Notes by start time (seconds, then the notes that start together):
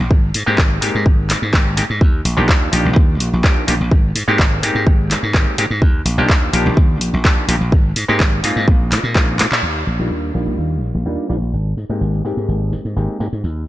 0.11 G#1, kick
0.34 G#2, open hi-hat
0.46 G#2 G#3 A#3 C4 D#4 G4
0.58 G#1, kick, clap
0.81 G#2 G#3 A#3 C4 D#4 G4, open hi-hat
0.95 G#2
1.06 G#1, kick
1.30 G#2, clap, open hi-hat
1.42 G#2
1.53 G#1 G#3 A#3 C4 D#4 G4, kick, clap
1.77 G#2 G#3 A#3 C4 D#4 G4, open hi-hat
1.90 G#2
2.01 D#2, kick
2.25 A#1, open hi-hat
2.37 A#1 F3 A#3 D4 D#4 G4
2.49 D#2, kick, clap
2.72 A#1 F3 A#3 D4 D#4 G4, open hi-hat
2.85 A#1
2.96 D#2, kick
3.20 A#1, open hi-hat
3.33 A#1
3.44 F3 A#3 D4 D#4 G4, kick, clap
3.67 A#1 F3 A#3 D4 D#4 G4, open hi-hat
3.81 A#1
3.91 G#1, kick
4.15 G#2, open hi-hat
4.28 G#2 G#3 A#3 C4 D#4 G4
4.39 G#1, kick, clap
4.63 G#2 G#3 A#3 C4 D#4 G4, open hi-hat
4.75 G#2
4.87 G#1, kick
5.10 G#2, clap, open hi-hat
5.23 G#2
5.34 G#1 G#3 A#3 C4 D#4 G4, kick, clap
5.58 G#2 G#3 A#3 C4 D#4 G4, open hi-hat
5.70 G#2
5.82 D#2, kick
6.05 A#1, open hi-hat
6.18 A#1 F3 A#3 D4 D#4 G4
6.29 D#2, kick, clap
6.53 A#1 F3 A#3 D4 D#4 G4, open hi-hat
6.66 A#1
6.77 D#2, kick
7.01 A#1, open hi-hat
7.14 A#1
7.25 D#2 F3 A#3 D4 D#4 G4, kick, clap
7.48 A#1 F3 A#3 D4 D#4 G4, open hi-hat
7.61 A#1
7.72 G#1, kick
7.96 G#2, open hi-hat
8.08 G#2 G#3 A#3 C4 D#4 G4
8.20 G#1, kick, clap
8.43 G#2 G#3 A#3 C4 D#4 F4, open hi-hat
8.56 G#2
8.68 A#1, kick
8.92 A#2, clap, open hi-hat
9.03 A#2
9.15 A#1 G#3 A#3 C4 D#4 F4, kick, clap
9.39 A#2 G#3 A#3 C4 D#4 F4, clap, open hi-hat
9.52 A#2, clap
9.63 D#2
9.87 A#1, tambourine
9.99 A#1 G3 A#3 D4 D#4 F4
10.11 D#2
10.34 A#1 G3 A#3 D4 D#4 F4, tambourine
10.47 A#1
10.58 D#2, tambourine
10.82 A#1, tambourine
10.94 A#1, tambourine
11.06 D#2 G3 A#3 D4 D#4 F4, tambourine
11.29 A#1 G3 A#3 D4 D#4 F4, tambourine
11.42 A#1, tambourine
11.53 G#1, tambourine
11.77 G#2, tambourine
11.89 G#2 G#3 A#3 C4 D#4 G4, tambourine
12.01 G#1, tambourine
12.14 tambourine
12.25 G#2 G#3 A#3 C4 D#4 G4, tambourine
12.37 G#2, tambourine
12.48 G#1, tambourine
12.72 G#2, tambourine
12.85 G#2, tambourine
12.96 G#1 G#3 A#3 C4 D#4 G4, tambourine
13.20 G#2 G#3 A#3 C4 D#4 G4, tambourine
13.33 G#2, tambourine
13.44 D#2, tambourine